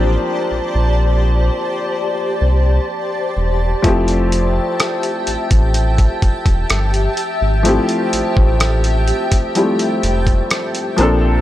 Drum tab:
HH |----------------|xxx-xxxxxxxxxxx-|xxx-xxxxxxxxxxx-|
SD |----------------|----r-------r---|----r-------r---|
BD |----------------|o------o-ooo----|---o---o---o----|